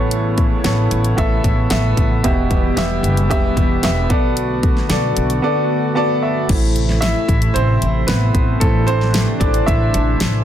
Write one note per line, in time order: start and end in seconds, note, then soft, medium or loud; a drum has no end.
0.00 0.50 A1 medium
0.00 0.61 A2 medium
0.00 2.22 C#3 medium
0.00 0.61 E3 medium
0.00 2.22 A3 medium
0.00 0.58 B3 medium
0.00 6.45 B3 medium
0.00 2.22 E4 medium
0.00 0.59 A4 medium
0.00 0.59 C#5 medium
0.11 closed hi-hat medium
0.38 kick medium
0.38 closed hi-hat soft
0.64 0.87 A1 medium
0.64 1.14 B3 medium
0.64 1.14 A4 medium
0.64 1.15 C#5 medium
0.64 snare medium
0.64 closed hi-hat medium
0.91 1.13 A1 medium
0.91 closed hi-hat medium
1.04 closed hi-hat medium
1.17 1.40 A1 medium
1.17 1.67 B3 medium
1.17 1.67 A4 medium
1.17 1.68 E5 medium
1.17 kick medium
1.17 closed hi-hat medium
1.44 1.66 A1 medium
1.44 kick medium
1.44 closed hi-hat medium
1.70 1.93 A1 medium
1.70 2.20 B3 medium
1.70 2.20 A4 medium
1.70 2.21 E5 medium
1.70 snare loud
1.70 closed hi-hat medium
1.97 2.19 A1 medium
1.97 kick medium
1.97 closed hi-hat medium
2.24 2.68 E1 medium
2.24 3.00 B2 medium
2.24 4.08 E3 medium
2.24 4.08 G3 medium
2.24 2.73 B3 medium
2.24 4.08 G4 medium
2.24 2.74 G4 medium
2.24 2.74 E5 medium
2.24 kick medium
2.24 closed hi-hat medium
2.51 kick medium
2.51 closed hi-hat medium
2.76 2.99 E1 medium
2.76 3.26 B3 medium
2.76 3.27 G4 medium
2.76 3.27 E5 medium
2.76 snare loud
2.76 closed hi-hat medium
3.03 3.31 F#1 medium
3.03 closed hi-hat medium
3.17 closed hi-hat medium
3.30 3.52 E1 medium
3.30 3.79 B3 medium
3.30 3.80 G4 medium
3.30 3.80 E5 medium
3.30 kick medium
3.30 closed hi-hat medium
3.57 3.79 E1 medium
3.57 kick medium
3.57 closed hi-hat medium
3.83 4.05 E1 loud
3.83 4.08 B3 medium
3.83 4.10 G4 medium
3.83 4.11 E5 medium
3.83 snare loud
3.83 closed hi-hat medium
4.09 4.76 B1 medium
4.09 6.46 D3 medium
4.09 6.46 A3 medium
4.09 4.84 B3 medium
4.09 6.46 F#4 medium
4.09 4.84 A4 medium
4.09 4.85 D5 medium
4.09 kick medium
4.09 closed hi-hat medium
4.37 closed hi-hat medium
4.63 kick medium
4.63 closed hi-hat soft
4.77 snare soft
4.89 5.12 B1 loud
4.89 5.39 B3 medium
4.89 5.39 A4 medium
4.89 5.40 D5 medium
4.89 snare medium
4.89 closed hi-hat medium
5.17 5.39 B1 medium
5.17 closed hi-hat medium
5.30 closed hi-hat medium
5.42 5.92 B3 medium
5.42 5.92 A4 medium
5.42 5.93 D5 medium
5.95 6.45 B3 medium
5.95 6.45 A4 medium
5.95 6.46 D5 loud
5.95 6.21 A5 medium
6.23 6.47 E5 medium
6.48 7.13 A1 loud
6.48 10.44 C3 medium
6.48 10.44 E3 medium
6.48 6.84 A3 medium
6.48 10.44 A3 medium
6.48 6.84 C4 soft
6.48 6.85 E4 medium
6.48 8.60 E4 medium
6.48 kick loud
6.48 closed hi-hat loud
6.48 crash medium
6.76 closed hi-hat medium
6.89 snare soft
7.01 7.52 E4 medium
7.01 7.56 E5 medium
7.01 snare loud
7.01 closed hi-hat medium
7.29 7.51 A1 loud
7.29 kick medium
7.29 closed hi-hat medium
7.42 closed hi-hat medium
7.54 7.77 A1 medium
7.54 8.05 C4 medium
7.54 8.09 C5 loud
7.54 closed hi-hat medium
7.82 8.04 A1 medium
7.82 closed hi-hat medium
8.07 8.30 A1 loud
8.07 8.58 B3 medium
8.07 8.62 B4 medium
8.07 snare loud
8.07 closed hi-hat loud
8.35 8.57 A1 medium
8.35 kick medium
8.35 closed hi-hat medium
8.60 9.25 A1 medium
8.60 8.87 A3 medium
8.60 8.87 C4 soft
8.60 10.44 D4 medium
8.60 9.40 E4 medium
8.60 8.86 A4 medium
8.60 kick loud
8.60 closed hi-hat loud
8.87 9.38 C4 medium
8.87 9.42 C5 loud
8.87 closed hi-hat medium
9.01 snare soft
9.14 snare loud
9.14 closed hi-hat medium
9.40 9.63 A1 loud
9.40 9.65 A3 soft
9.40 9.65 C4 soft
9.40 9.66 D4 medium
9.40 9.65 E4 medium
9.40 9.68 D5 medium
9.40 kick medium
9.40 closed hi-hat medium
9.54 closed hi-hat medium
9.66 9.90 A1 loud
9.66 10.44 E4 medium
9.66 10.43 E5 medium
9.66 kick medium
9.66 closed hi-hat medium
9.94 10.16 A1 loud
9.94 closed hi-hat medium
10.20 10.43 A1 medium
10.20 snare loud
10.20 closed hi-hat loud